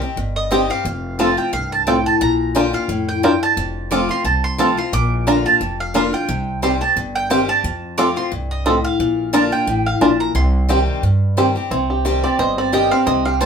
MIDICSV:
0, 0, Header, 1, 5, 480
1, 0, Start_track
1, 0, Tempo, 339559
1, 1206, Time_signature, 4, 2, 24, 8
1, 19021, End_track
2, 0, Start_track
2, 0, Title_t, "Mandolin"
2, 0, Program_c, 0, 25
2, 0, Note_on_c, 0, 75, 82
2, 494, Note_off_c, 0, 75, 0
2, 511, Note_on_c, 0, 75, 91
2, 711, Note_off_c, 0, 75, 0
2, 731, Note_on_c, 0, 75, 93
2, 975, Note_off_c, 0, 75, 0
2, 996, Note_on_c, 0, 77, 93
2, 1685, Note_off_c, 0, 77, 0
2, 1691, Note_on_c, 0, 81, 88
2, 1946, Note_off_c, 0, 81, 0
2, 1951, Note_on_c, 0, 79, 80
2, 2152, Note_off_c, 0, 79, 0
2, 2167, Note_on_c, 0, 77, 101
2, 2431, Note_off_c, 0, 77, 0
2, 2436, Note_on_c, 0, 81, 103
2, 2635, Note_off_c, 0, 81, 0
2, 2649, Note_on_c, 0, 79, 102
2, 2895, Note_off_c, 0, 79, 0
2, 2915, Note_on_c, 0, 81, 107
2, 3115, Note_off_c, 0, 81, 0
2, 3132, Note_on_c, 0, 82, 100
2, 3610, Note_off_c, 0, 82, 0
2, 3616, Note_on_c, 0, 79, 88
2, 3859, Note_off_c, 0, 79, 0
2, 3875, Note_on_c, 0, 77, 95
2, 4321, Note_off_c, 0, 77, 0
2, 4363, Note_on_c, 0, 79, 99
2, 4562, Note_off_c, 0, 79, 0
2, 4579, Note_on_c, 0, 79, 103
2, 4840, Note_off_c, 0, 79, 0
2, 4846, Note_on_c, 0, 81, 112
2, 5487, Note_off_c, 0, 81, 0
2, 5533, Note_on_c, 0, 86, 110
2, 5801, Note_off_c, 0, 86, 0
2, 5806, Note_on_c, 0, 84, 98
2, 6004, Note_off_c, 0, 84, 0
2, 6010, Note_on_c, 0, 81, 102
2, 6270, Note_off_c, 0, 81, 0
2, 6276, Note_on_c, 0, 84, 109
2, 6483, Note_off_c, 0, 84, 0
2, 6489, Note_on_c, 0, 81, 105
2, 6757, Note_off_c, 0, 81, 0
2, 6762, Note_on_c, 0, 84, 99
2, 6968, Note_off_c, 0, 84, 0
2, 6974, Note_on_c, 0, 86, 115
2, 7417, Note_off_c, 0, 86, 0
2, 7459, Note_on_c, 0, 82, 99
2, 7711, Note_off_c, 0, 82, 0
2, 7717, Note_on_c, 0, 81, 89
2, 8161, Note_off_c, 0, 81, 0
2, 8203, Note_on_c, 0, 77, 97
2, 8396, Note_off_c, 0, 77, 0
2, 8413, Note_on_c, 0, 77, 90
2, 8672, Note_off_c, 0, 77, 0
2, 8678, Note_on_c, 0, 79, 99
2, 9320, Note_off_c, 0, 79, 0
2, 9372, Note_on_c, 0, 84, 97
2, 9615, Note_off_c, 0, 84, 0
2, 9630, Note_on_c, 0, 81, 91
2, 9830, Note_off_c, 0, 81, 0
2, 10114, Note_on_c, 0, 79, 108
2, 10310, Note_off_c, 0, 79, 0
2, 10326, Note_on_c, 0, 79, 98
2, 10571, Note_off_c, 0, 79, 0
2, 10588, Note_on_c, 0, 81, 105
2, 11273, Note_off_c, 0, 81, 0
2, 11278, Note_on_c, 0, 86, 106
2, 11544, Note_off_c, 0, 86, 0
2, 11550, Note_on_c, 0, 84, 91
2, 11748, Note_off_c, 0, 84, 0
2, 12031, Note_on_c, 0, 75, 92
2, 12221, Note_off_c, 0, 75, 0
2, 12238, Note_on_c, 0, 75, 92
2, 12485, Note_off_c, 0, 75, 0
2, 12504, Note_on_c, 0, 77, 98
2, 13149, Note_off_c, 0, 77, 0
2, 13197, Note_on_c, 0, 81, 97
2, 13459, Note_off_c, 0, 81, 0
2, 13465, Note_on_c, 0, 79, 95
2, 13944, Note_on_c, 0, 77, 92
2, 13957, Note_off_c, 0, 79, 0
2, 14164, Note_off_c, 0, 77, 0
2, 14165, Note_on_c, 0, 81, 90
2, 14407, Note_off_c, 0, 81, 0
2, 14422, Note_on_c, 0, 82, 100
2, 14633, Note_off_c, 0, 82, 0
2, 14638, Note_on_c, 0, 84, 90
2, 16284, Note_off_c, 0, 84, 0
2, 17295, Note_on_c, 0, 74, 87
2, 17507, Note_off_c, 0, 74, 0
2, 17519, Note_on_c, 0, 75, 92
2, 17774, Note_off_c, 0, 75, 0
2, 17787, Note_on_c, 0, 74, 87
2, 17993, Note_off_c, 0, 74, 0
2, 18002, Note_on_c, 0, 75, 90
2, 18254, Note_on_c, 0, 77, 101
2, 18256, Note_off_c, 0, 75, 0
2, 18467, Note_off_c, 0, 77, 0
2, 18468, Note_on_c, 0, 75, 84
2, 18729, Note_off_c, 0, 75, 0
2, 18736, Note_on_c, 0, 77, 92
2, 18945, Note_off_c, 0, 77, 0
2, 18950, Note_on_c, 0, 81, 96
2, 19021, Note_off_c, 0, 81, 0
2, 19021, End_track
3, 0, Start_track
3, 0, Title_t, "Five-string banjo"
3, 0, Program_c, 1, 105
3, 728, Note_on_c, 1, 60, 69
3, 733, Note_on_c, 1, 67, 74
3, 739, Note_off_c, 1, 67, 0
3, 739, Note_on_c, 1, 67, 64
3, 843, Note_off_c, 1, 60, 0
3, 847, Note_off_c, 1, 67, 0
3, 1690, Note_on_c, 1, 60, 60
3, 1699, Note_on_c, 1, 65, 59
3, 1701, Note_on_c, 1, 69, 59
3, 1806, Note_off_c, 1, 60, 0
3, 1808, Note_off_c, 1, 65, 0
3, 1810, Note_off_c, 1, 69, 0
3, 2649, Note_on_c, 1, 60, 68
3, 2655, Note_on_c, 1, 65, 78
3, 2658, Note_on_c, 1, 69, 66
3, 2766, Note_off_c, 1, 60, 0
3, 2768, Note_off_c, 1, 65, 0
3, 2770, Note_off_c, 1, 69, 0
3, 3613, Note_on_c, 1, 62, 58
3, 3618, Note_on_c, 1, 65, 58
3, 3620, Note_on_c, 1, 70, 59
3, 3728, Note_off_c, 1, 62, 0
3, 3730, Note_off_c, 1, 65, 0
3, 3731, Note_off_c, 1, 70, 0
3, 4576, Note_on_c, 1, 62, 75
3, 4584, Note_on_c, 1, 65, 76
3, 4586, Note_on_c, 1, 70, 77
3, 4690, Note_off_c, 1, 62, 0
3, 4692, Note_off_c, 1, 65, 0
3, 4694, Note_off_c, 1, 70, 0
3, 5537, Note_on_c, 1, 60, 59
3, 5546, Note_on_c, 1, 65, 58
3, 5546, Note_on_c, 1, 69, 62
3, 5650, Note_off_c, 1, 60, 0
3, 5653, Note_off_c, 1, 65, 0
3, 5655, Note_off_c, 1, 69, 0
3, 6492, Note_on_c, 1, 60, 70
3, 6502, Note_on_c, 1, 65, 73
3, 6503, Note_on_c, 1, 69, 75
3, 6608, Note_off_c, 1, 60, 0
3, 6609, Note_off_c, 1, 65, 0
3, 6613, Note_off_c, 1, 69, 0
3, 7449, Note_on_c, 1, 62, 62
3, 7454, Note_on_c, 1, 65, 59
3, 7464, Note_on_c, 1, 70, 61
3, 7565, Note_off_c, 1, 62, 0
3, 7568, Note_off_c, 1, 65, 0
3, 7571, Note_off_c, 1, 70, 0
3, 8411, Note_on_c, 1, 62, 69
3, 8419, Note_on_c, 1, 70, 67
3, 8421, Note_on_c, 1, 65, 71
3, 8526, Note_off_c, 1, 62, 0
3, 8528, Note_off_c, 1, 65, 0
3, 8530, Note_off_c, 1, 70, 0
3, 9370, Note_on_c, 1, 60, 67
3, 9378, Note_on_c, 1, 67, 58
3, 9381, Note_off_c, 1, 67, 0
3, 9381, Note_on_c, 1, 67, 62
3, 9484, Note_off_c, 1, 60, 0
3, 9489, Note_off_c, 1, 67, 0
3, 10328, Note_on_c, 1, 60, 70
3, 10334, Note_on_c, 1, 67, 71
3, 10336, Note_off_c, 1, 67, 0
3, 10336, Note_on_c, 1, 67, 74
3, 10443, Note_off_c, 1, 60, 0
3, 10446, Note_off_c, 1, 67, 0
3, 11283, Note_on_c, 1, 60, 60
3, 11290, Note_on_c, 1, 65, 58
3, 11293, Note_on_c, 1, 69, 68
3, 11400, Note_off_c, 1, 60, 0
3, 11402, Note_off_c, 1, 65, 0
3, 11404, Note_off_c, 1, 69, 0
3, 12239, Note_on_c, 1, 60, 74
3, 12249, Note_on_c, 1, 65, 77
3, 12250, Note_on_c, 1, 69, 72
3, 12357, Note_off_c, 1, 60, 0
3, 12359, Note_off_c, 1, 65, 0
3, 12361, Note_off_c, 1, 69, 0
3, 13195, Note_on_c, 1, 62, 59
3, 13205, Note_on_c, 1, 65, 69
3, 13206, Note_on_c, 1, 70, 65
3, 13314, Note_off_c, 1, 62, 0
3, 13317, Note_off_c, 1, 65, 0
3, 13319, Note_off_c, 1, 70, 0
3, 14154, Note_on_c, 1, 62, 75
3, 14161, Note_on_c, 1, 65, 80
3, 14163, Note_on_c, 1, 70, 75
3, 14272, Note_off_c, 1, 62, 0
3, 14275, Note_off_c, 1, 65, 0
3, 14276, Note_off_c, 1, 70, 0
3, 15117, Note_on_c, 1, 60, 57
3, 15125, Note_on_c, 1, 67, 57
3, 15127, Note_off_c, 1, 67, 0
3, 15127, Note_on_c, 1, 67, 65
3, 15233, Note_off_c, 1, 60, 0
3, 15238, Note_off_c, 1, 67, 0
3, 16082, Note_on_c, 1, 60, 76
3, 16087, Note_on_c, 1, 67, 70
3, 16090, Note_off_c, 1, 67, 0
3, 16090, Note_on_c, 1, 67, 68
3, 16195, Note_off_c, 1, 60, 0
3, 16199, Note_off_c, 1, 67, 0
3, 16555, Note_on_c, 1, 60, 79
3, 16822, Note_on_c, 1, 67, 49
3, 17038, Note_off_c, 1, 67, 0
3, 17038, Note_on_c, 1, 67, 55
3, 17296, Note_off_c, 1, 60, 0
3, 17302, Note_on_c, 1, 60, 61
3, 17517, Note_on_c, 1, 72, 60
3, 17729, Note_off_c, 1, 67, 0
3, 17767, Note_off_c, 1, 60, 0
3, 17784, Note_on_c, 1, 60, 55
3, 17996, Note_on_c, 1, 67, 64
3, 18209, Note_off_c, 1, 72, 0
3, 18244, Note_off_c, 1, 60, 0
3, 18261, Note_on_c, 1, 60, 56
3, 18454, Note_off_c, 1, 60, 0
3, 18471, Note_on_c, 1, 60, 77
3, 18689, Note_off_c, 1, 67, 0
3, 18741, Note_on_c, 1, 67, 52
3, 18957, Note_on_c, 1, 72, 55
3, 19021, Note_off_c, 1, 60, 0
3, 19021, Note_off_c, 1, 67, 0
3, 19021, Note_off_c, 1, 72, 0
3, 19021, End_track
4, 0, Start_track
4, 0, Title_t, "Steel-string acoustic guitar"
4, 0, Program_c, 2, 25
4, 0, Note_on_c, 2, 48, 91
4, 22, Note_on_c, 2, 67, 62
4, 46, Note_on_c, 2, 60, 47
4, 200, Note_off_c, 2, 48, 0
4, 232, Note_off_c, 2, 67, 0
4, 243, Note_on_c, 2, 43, 91
4, 244, Note_off_c, 2, 60, 0
4, 717, Note_on_c, 2, 51, 91
4, 727, Note_on_c, 2, 55, 85
4, 732, Note_on_c, 2, 60, 92
4, 739, Note_on_c, 2, 67, 101
4, 970, Note_off_c, 2, 67, 0
4, 975, Note_off_c, 2, 51, 0
4, 980, Note_off_c, 2, 55, 0
4, 983, Note_off_c, 2, 60, 0
4, 987, Note_on_c, 2, 67, 65
4, 1009, Note_on_c, 2, 60, 50
4, 1163, Note_off_c, 2, 43, 0
4, 1196, Note_off_c, 2, 67, 0
4, 1207, Note_off_c, 2, 60, 0
4, 1207, Note_on_c, 2, 41, 93
4, 1680, Note_on_c, 2, 53, 87
4, 1685, Note_on_c, 2, 57, 90
4, 1692, Note_on_c, 2, 60, 83
4, 1699, Note_on_c, 2, 65, 92
4, 1924, Note_off_c, 2, 65, 0
4, 1938, Note_off_c, 2, 53, 0
4, 1941, Note_off_c, 2, 57, 0
4, 1941, Note_on_c, 2, 65, 64
4, 1944, Note_off_c, 2, 60, 0
4, 1964, Note_on_c, 2, 60, 42
4, 2125, Note_off_c, 2, 41, 0
4, 2154, Note_off_c, 2, 65, 0
4, 2160, Note_on_c, 2, 43, 79
4, 2165, Note_off_c, 2, 60, 0
4, 2623, Note_off_c, 2, 43, 0
4, 2640, Note_on_c, 2, 45, 84
4, 3103, Note_off_c, 2, 45, 0
4, 3124, Note_on_c, 2, 46, 100
4, 3600, Note_on_c, 2, 50, 83
4, 3608, Note_on_c, 2, 58, 93
4, 3616, Note_on_c, 2, 62, 93
4, 3621, Note_on_c, 2, 65, 106
4, 3845, Note_off_c, 2, 65, 0
4, 3859, Note_off_c, 2, 50, 0
4, 3862, Note_on_c, 2, 65, 57
4, 3863, Note_off_c, 2, 58, 0
4, 3867, Note_off_c, 2, 62, 0
4, 3883, Note_on_c, 2, 62, 41
4, 4044, Note_off_c, 2, 46, 0
4, 4075, Note_off_c, 2, 65, 0
4, 4086, Note_off_c, 2, 62, 0
4, 4086, Note_on_c, 2, 45, 94
4, 4546, Note_off_c, 2, 45, 0
4, 4570, Note_on_c, 2, 43, 89
4, 5028, Note_off_c, 2, 43, 0
4, 5048, Note_on_c, 2, 41, 97
4, 5523, Note_on_c, 2, 53, 91
4, 5532, Note_on_c, 2, 57, 92
4, 5538, Note_on_c, 2, 60, 85
4, 5543, Note_on_c, 2, 65, 107
4, 5766, Note_off_c, 2, 65, 0
4, 5780, Note_off_c, 2, 53, 0
4, 5783, Note_on_c, 2, 65, 59
4, 5785, Note_off_c, 2, 57, 0
4, 5788, Note_off_c, 2, 60, 0
4, 5806, Note_on_c, 2, 60, 49
4, 5966, Note_off_c, 2, 41, 0
4, 5995, Note_off_c, 2, 65, 0
4, 6000, Note_on_c, 2, 48, 84
4, 6007, Note_off_c, 2, 60, 0
4, 6479, Note_on_c, 2, 53, 84
4, 6488, Note_on_c, 2, 57, 85
4, 6491, Note_on_c, 2, 60, 91
4, 6499, Note_on_c, 2, 65, 92
4, 6732, Note_off_c, 2, 65, 0
4, 6738, Note_off_c, 2, 53, 0
4, 6743, Note_off_c, 2, 57, 0
4, 6744, Note_off_c, 2, 60, 0
4, 6749, Note_on_c, 2, 65, 62
4, 6768, Note_on_c, 2, 60, 46
4, 6921, Note_off_c, 2, 48, 0
4, 6958, Note_off_c, 2, 65, 0
4, 6967, Note_off_c, 2, 60, 0
4, 6971, Note_on_c, 2, 46, 100
4, 7445, Note_on_c, 2, 50, 79
4, 7451, Note_on_c, 2, 58, 86
4, 7457, Note_on_c, 2, 62, 98
4, 7464, Note_on_c, 2, 65, 106
4, 7694, Note_off_c, 2, 65, 0
4, 7701, Note_off_c, 2, 50, 0
4, 7704, Note_off_c, 2, 58, 0
4, 7707, Note_off_c, 2, 62, 0
4, 7710, Note_on_c, 2, 65, 65
4, 7732, Note_on_c, 2, 62, 50
4, 7886, Note_off_c, 2, 46, 0
4, 7918, Note_off_c, 2, 65, 0
4, 7927, Note_on_c, 2, 41, 88
4, 7929, Note_off_c, 2, 62, 0
4, 8399, Note_on_c, 2, 50, 90
4, 8405, Note_on_c, 2, 58, 98
4, 8412, Note_on_c, 2, 62, 85
4, 8422, Note_on_c, 2, 65, 100
4, 8645, Note_off_c, 2, 65, 0
4, 8657, Note_off_c, 2, 50, 0
4, 8660, Note_off_c, 2, 58, 0
4, 8662, Note_on_c, 2, 65, 55
4, 8664, Note_off_c, 2, 62, 0
4, 8686, Note_on_c, 2, 62, 49
4, 8843, Note_off_c, 2, 41, 0
4, 8873, Note_off_c, 2, 65, 0
4, 8885, Note_off_c, 2, 62, 0
4, 8885, Note_on_c, 2, 48, 93
4, 9363, Note_on_c, 2, 51, 81
4, 9369, Note_on_c, 2, 55, 83
4, 9379, Note_on_c, 2, 60, 89
4, 9383, Note_on_c, 2, 67, 99
4, 9607, Note_off_c, 2, 67, 0
4, 9618, Note_off_c, 2, 51, 0
4, 9621, Note_off_c, 2, 55, 0
4, 9624, Note_on_c, 2, 67, 56
4, 9626, Note_off_c, 2, 60, 0
4, 9650, Note_on_c, 2, 60, 48
4, 9801, Note_off_c, 2, 48, 0
4, 9833, Note_off_c, 2, 67, 0
4, 9846, Note_off_c, 2, 60, 0
4, 9847, Note_on_c, 2, 43, 94
4, 10319, Note_on_c, 2, 51, 83
4, 10327, Note_on_c, 2, 55, 89
4, 10335, Note_on_c, 2, 60, 99
4, 10338, Note_on_c, 2, 67, 109
4, 10562, Note_off_c, 2, 67, 0
4, 10575, Note_off_c, 2, 51, 0
4, 10579, Note_off_c, 2, 55, 0
4, 10579, Note_on_c, 2, 67, 59
4, 10583, Note_off_c, 2, 60, 0
4, 10599, Note_on_c, 2, 60, 52
4, 10761, Note_off_c, 2, 43, 0
4, 10790, Note_off_c, 2, 67, 0
4, 10800, Note_off_c, 2, 60, 0
4, 10804, Note_on_c, 2, 41, 94
4, 11274, Note_on_c, 2, 53, 88
4, 11279, Note_on_c, 2, 57, 100
4, 11287, Note_on_c, 2, 60, 95
4, 11293, Note_on_c, 2, 65, 100
4, 11522, Note_off_c, 2, 65, 0
4, 11532, Note_off_c, 2, 53, 0
4, 11535, Note_off_c, 2, 57, 0
4, 11538, Note_off_c, 2, 60, 0
4, 11539, Note_on_c, 2, 65, 57
4, 11562, Note_on_c, 2, 60, 49
4, 11719, Note_off_c, 2, 41, 0
4, 11749, Note_off_c, 2, 65, 0
4, 11755, Note_on_c, 2, 43, 84
4, 11760, Note_off_c, 2, 60, 0
4, 12216, Note_off_c, 2, 43, 0
4, 12238, Note_on_c, 2, 45, 79
4, 12697, Note_off_c, 2, 45, 0
4, 12721, Note_on_c, 2, 46, 98
4, 13187, Note_on_c, 2, 50, 98
4, 13195, Note_on_c, 2, 58, 97
4, 13203, Note_on_c, 2, 62, 98
4, 13207, Note_on_c, 2, 65, 113
4, 13441, Note_off_c, 2, 65, 0
4, 13447, Note_off_c, 2, 50, 0
4, 13450, Note_off_c, 2, 58, 0
4, 13455, Note_off_c, 2, 62, 0
4, 13458, Note_on_c, 2, 65, 66
4, 13478, Note_on_c, 2, 62, 51
4, 13636, Note_off_c, 2, 46, 0
4, 13667, Note_off_c, 2, 65, 0
4, 13676, Note_on_c, 2, 45, 92
4, 13677, Note_off_c, 2, 62, 0
4, 14134, Note_off_c, 2, 45, 0
4, 14152, Note_on_c, 2, 46, 95
4, 14612, Note_off_c, 2, 46, 0
4, 14628, Note_on_c, 2, 48, 96
4, 15105, Note_on_c, 2, 51, 88
4, 15112, Note_on_c, 2, 55, 88
4, 15117, Note_on_c, 2, 60, 95
4, 15125, Note_on_c, 2, 67, 99
4, 15548, Note_off_c, 2, 48, 0
4, 15568, Note_off_c, 2, 51, 0
4, 15572, Note_off_c, 2, 55, 0
4, 15574, Note_off_c, 2, 60, 0
4, 15578, Note_off_c, 2, 67, 0
4, 15596, Note_on_c, 2, 43, 89
4, 16071, Note_on_c, 2, 51, 74
4, 16078, Note_on_c, 2, 55, 84
4, 16086, Note_on_c, 2, 60, 96
4, 16091, Note_on_c, 2, 67, 89
4, 16318, Note_off_c, 2, 67, 0
4, 16327, Note_off_c, 2, 51, 0
4, 16331, Note_off_c, 2, 55, 0
4, 16335, Note_off_c, 2, 60, 0
4, 16335, Note_on_c, 2, 67, 60
4, 16356, Note_on_c, 2, 60, 54
4, 16512, Note_off_c, 2, 43, 0
4, 16544, Note_off_c, 2, 67, 0
4, 16554, Note_off_c, 2, 60, 0
4, 16559, Note_on_c, 2, 48, 89
4, 17032, Note_on_c, 2, 51, 90
4, 17041, Note_on_c, 2, 55, 83
4, 17047, Note_on_c, 2, 60, 89
4, 17052, Note_on_c, 2, 67, 104
4, 17279, Note_off_c, 2, 67, 0
4, 17288, Note_off_c, 2, 51, 0
4, 17293, Note_off_c, 2, 55, 0
4, 17296, Note_off_c, 2, 60, 0
4, 17296, Note_on_c, 2, 67, 54
4, 17316, Note_on_c, 2, 60, 45
4, 17475, Note_off_c, 2, 48, 0
4, 17505, Note_off_c, 2, 67, 0
4, 17515, Note_off_c, 2, 60, 0
4, 17515, Note_on_c, 2, 43, 84
4, 17987, Note_on_c, 2, 51, 77
4, 17995, Note_on_c, 2, 55, 84
4, 18003, Note_on_c, 2, 60, 89
4, 18006, Note_on_c, 2, 67, 96
4, 18240, Note_off_c, 2, 67, 0
4, 18246, Note_off_c, 2, 51, 0
4, 18250, Note_off_c, 2, 55, 0
4, 18254, Note_off_c, 2, 60, 0
4, 18257, Note_on_c, 2, 67, 55
4, 18275, Note_on_c, 2, 60, 47
4, 18434, Note_off_c, 2, 43, 0
4, 18466, Note_off_c, 2, 67, 0
4, 18473, Note_on_c, 2, 48, 99
4, 18475, Note_off_c, 2, 60, 0
4, 18952, Note_on_c, 2, 51, 88
4, 18957, Note_on_c, 2, 55, 90
4, 18964, Note_on_c, 2, 60, 99
4, 18971, Note_on_c, 2, 67, 98
4, 19021, Note_off_c, 2, 48, 0
4, 19021, Note_off_c, 2, 51, 0
4, 19021, Note_off_c, 2, 55, 0
4, 19021, Note_off_c, 2, 60, 0
4, 19021, Note_off_c, 2, 67, 0
4, 19021, End_track
5, 0, Start_track
5, 0, Title_t, "Upright bass"
5, 0, Program_c, 3, 32
5, 235, Note_on_c, 3, 31, 71
5, 967, Note_off_c, 3, 31, 0
5, 1199, Note_on_c, 3, 29, 96
5, 1930, Note_off_c, 3, 29, 0
5, 2156, Note_on_c, 3, 36, 74
5, 2889, Note_off_c, 3, 36, 0
5, 3120, Note_on_c, 3, 34, 90
5, 3851, Note_off_c, 3, 34, 0
5, 4076, Note_on_c, 3, 41, 84
5, 4809, Note_off_c, 3, 41, 0
5, 5042, Note_on_c, 3, 29, 87
5, 5772, Note_off_c, 3, 29, 0
5, 5997, Note_on_c, 3, 36, 78
5, 6729, Note_off_c, 3, 36, 0
5, 6962, Note_on_c, 3, 34, 100
5, 7691, Note_off_c, 3, 34, 0
5, 7924, Note_on_c, 3, 29, 82
5, 8652, Note_off_c, 3, 29, 0
5, 8888, Note_on_c, 3, 36, 96
5, 9613, Note_off_c, 3, 36, 0
5, 9841, Note_on_c, 3, 31, 73
5, 10568, Note_off_c, 3, 31, 0
5, 10797, Note_on_c, 3, 41, 85
5, 11526, Note_off_c, 3, 41, 0
5, 11760, Note_on_c, 3, 36, 77
5, 12486, Note_off_c, 3, 36, 0
5, 12712, Note_on_c, 3, 34, 91
5, 13441, Note_off_c, 3, 34, 0
5, 13667, Note_on_c, 3, 33, 80
5, 14079, Note_off_c, 3, 33, 0
5, 14149, Note_on_c, 3, 34, 86
5, 14560, Note_off_c, 3, 34, 0
5, 14627, Note_on_c, 3, 36, 99
5, 15357, Note_off_c, 3, 36, 0
5, 15586, Note_on_c, 3, 43, 82
5, 16317, Note_off_c, 3, 43, 0
5, 16550, Note_on_c, 3, 36, 92
5, 17280, Note_off_c, 3, 36, 0
5, 17510, Note_on_c, 3, 31, 78
5, 18240, Note_off_c, 3, 31, 0
5, 18471, Note_on_c, 3, 36, 98
5, 19021, Note_off_c, 3, 36, 0
5, 19021, End_track
0, 0, End_of_file